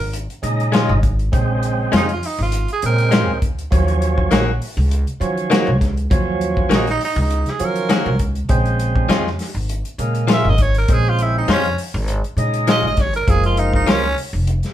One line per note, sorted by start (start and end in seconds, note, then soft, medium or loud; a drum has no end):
0.00 0.25 G#1 medium
0.00 0.14 A#4 loud
0.13 closed hi-hat medium
0.30 closed hi-hat soft
0.42 0.91 A#2 medium
0.42 0.98 C#3 medium
0.42 0.99 G#3 medium
0.42 0.99 D#4 loud
0.42 closed hi-hat medium
0.60 closed hi-hat soft
0.72 0.92 G#3 medium
0.72 0.92 C#4 medium
0.72 0.93 F4 loud
0.72 snare loud
0.72 closed hi-hat medium
0.89 1.27 G#1 medium
1.03 kick medium
1.03 closed hi-hat medium
1.19 closed hi-hat soft
1.32 1.85 A#1 medium
1.32 2.07 C#3 medium
1.32 2.08 G#3 medium
1.32 2.08 C4 loud
1.32 kick loud
1.32 closed hi-hat medium
1.63 closed hi-hat medium
1.92 2.19 F2 medium
1.92 2.11 G#3 medium
1.92 2.11 C#4 medium
1.92 2.12 F4 medium
1.92 snare loud
1.92 closed hi-hat medium
1.96 2.09 D#4 medium
2.09 closed hi-hat soft
2.13 2.27 F4 medium
2.23 2.39 D#4 medium
2.23 open hi-hat medium
2.39 2.65 G#1 medium
2.39 2.69 F4 medium
2.52 closed hi-hat medium
2.68 closed hi-hat soft
2.73 2.84 G#4 medium
2.82 3.28 A#2 medium
2.82 3.38 C#3 medium
2.82 3.38 G#3 medium
2.82 3.39 C4 medium
2.82 3.42 A#4 medium
2.82 closed hi-hat medium
2.98 closed hi-hat soft
3.11 3.31 G#3 medium
3.11 3.31 C#4 medium
3.11 3.32 F4 medium
3.11 snare loud
3.11 closed hi-hat medium
3.28 3.67 D2 medium
3.42 kick medium
3.42 closed hi-hat medium
3.59 closed hi-hat soft
3.71 4.24 D#2 medium
3.71 4.46 F3 medium
3.71 4.46 F#3 medium
3.71 4.47 C#4 medium
3.71 kick loud
3.71 closed hi-hat medium
3.88 closed hi-hat soft
4.02 closed hi-hat medium
4.18 kick medium
4.31 4.58 A#1 medium
4.31 4.50 D#3 medium
4.31 4.51 A#3 medium
4.31 4.51 C#4 medium
4.31 4.51 F#4 loud
4.31 snare loud
4.31 closed hi-hat medium
4.62 open hi-hat medium
4.77 5.03 C#2 loud
4.91 closed hi-hat medium
5.07 closed hi-hat soft
5.20 5.68 D#3 medium
5.20 5.76 F3 medium
5.20 5.77 F#3 medium
5.20 5.77 C#4 medium
5.20 closed hi-hat medium
5.37 closed hi-hat soft
5.50 5.69 D#3 medium
5.50 5.70 A#3 medium
5.50 5.70 C#4 medium
5.50 5.70 F#4 loud
5.50 snare loud
5.50 closed hi-hat medium
5.67 6.05 C#2 medium
5.81 kick medium
5.81 snare soft
5.81 closed hi-hat medium
5.97 closed hi-hat soft
6.10 6.63 D#2 loud
6.10 6.85 F3 medium
6.10 6.86 F#3 medium
6.10 6.86 C#4 loud
6.10 kick loud
6.10 closed hi-hat medium
6.41 closed hi-hat soft
6.57 kick medium
6.69 6.96 A#1 medium
6.69 6.89 D#3 medium
6.69 6.89 A#3 medium
6.69 6.89 C#4 medium
6.69 6.90 F#4 medium
6.69 snare loud
6.69 closed hi-hat medium
6.75 6.88 D#4 medium
6.87 7.01 D#4 medium
6.87 snare soft
6.87 closed hi-hat soft
7.01 open hi-hat medium
7.05 7.18 D#4 medium
7.16 7.42 C#2 loud
7.21 7.52 D#4 medium
7.31 closed hi-hat medium
7.46 snare soft
7.46 closed hi-hat soft
7.50 7.66 G#4 medium
7.60 8.07 D#3 medium
7.60 8.16 F3 medium
7.60 8.16 F#3 medium
7.60 8.16 C#4 medium
7.60 closed hi-hat medium
7.64 8.20 A#4 medium
7.76 closed hi-hat soft
7.89 8.08 D#3 medium
7.89 8.09 A#3 medium
7.89 8.09 C#4 medium
7.89 8.09 F#4 medium
7.89 snare loud
7.89 closed hi-hat medium
8.06 8.44 C#2 medium
8.19 kick medium
8.19 closed hi-hat medium
8.35 closed hi-hat soft
8.49 9.02 A#1 medium
8.49 9.24 C#3 medium
8.49 9.24 G#3 medium
8.49 9.25 C4 loud
8.49 kick loud
8.49 closed hi-hat medium
8.65 closed hi-hat soft
8.79 closed hi-hat medium
8.96 kick medium
9.09 9.35 F2 medium
9.09 9.28 F3 medium
9.09 9.28 G#3 medium
9.09 9.29 C#4 medium
9.09 9.29 F4 loud
9.09 snare loud
9.09 closed hi-hat medium
9.27 snare soft
9.39 snare soft
9.39 open hi-hat medium
9.54 9.81 G#1 medium
9.69 closed hi-hat medium
9.85 closed hi-hat soft
9.98 10.46 A#2 medium
9.98 10.55 C#3 medium
9.98 10.55 G#3 medium
9.98 10.55 A#3 medium
9.98 closed hi-hat medium
10.15 closed hi-hat soft
10.28 10.47 F3 medium
10.28 10.47 G#3 medium
10.28 10.48 C#4 medium
10.28 10.48 F4 medium
10.28 snare loud
10.28 closed hi-hat medium
10.33 10.50 E5 medium
10.45 10.83 G#1 medium
10.49 10.64 D#5 medium
10.58 10.75 C#5 medium
10.58 kick medium
10.58 closed hi-hat medium
10.74 10.94 A#4 medium
10.74 closed hi-hat soft
10.88 11.41 A#1 medium
10.88 11.63 C#3 medium
10.88 11.64 G#3 medium
10.88 11.64 C4 medium
10.88 kick loud
10.88 closed hi-hat medium
10.93 11.11 G#4 medium
11.09 11.24 F4 medium
11.19 11.35 E4 medium
11.19 closed hi-hat medium
11.38 11.49 D#4 medium
11.48 11.74 F2 medium
11.48 11.67 F3 medium
11.48 11.67 G#3 medium
11.48 11.68 C#4 medium
11.48 11.68 F4 medium
11.48 snare loud
11.48 closed hi-hat medium
11.52 11.79 C#4 medium
11.64 closed hi-hat soft
11.78 open hi-hat medium
11.94 12.20 G#1 loud
12.08 closed hi-hat medium
12.24 closed hi-hat soft
12.37 12.84 A#2 medium
12.37 12.93 C#3 medium
12.37 12.94 G#3 medium
12.37 12.94 D#4 medium
12.37 closed hi-hat medium
12.54 closed hi-hat soft
12.67 12.86 F3 medium
12.67 12.87 G#3 medium
12.67 12.87 C#4 medium
12.67 12.87 F4 medium
12.67 12.84 D#5 medium
12.67 snare loud
12.67 closed hi-hat medium
12.83 13.21 G#1 medium
12.87 13.02 D#5 medium
12.97 13.14 C#5 medium
12.97 kick medium
12.97 snare soft
12.97 closed hi-hat medium
13.14 13.31 A#4 medium
13.14 closed hi-hat soft
13.28 13.80 F#1 medium
13.28 14.02 F3 medium
13.28 14.03 G#3 medium
13.28 14.03 A#3 medium
13.28 13.44 G#4 medium
13.28 kick loud
13.28 closed hi-hat medium
13.44 13.60 F4 medium
13.44 closed hi-hat soft
13.57 13.73 D#4 medium
13.57 closed hi-hat medium
13.73 13.90 D#4 medium
13.73 kick medium
13.86 14.13 C#2 medium
13.86 14.06 F3 medium
13.86 14.06 A#3 medium
13.86 14.06 C#4 medium
13.86 14.17 C#4 medium
13.86 14.07 F4 medium
13.86 snare loud
13.86 closed hi-hat medium
14.18 open hi-hat medium
14.33 14.59 F1 medium
14.47 closed hi-hat medium
14.63 snare soft
14.63 closed hi-hat soft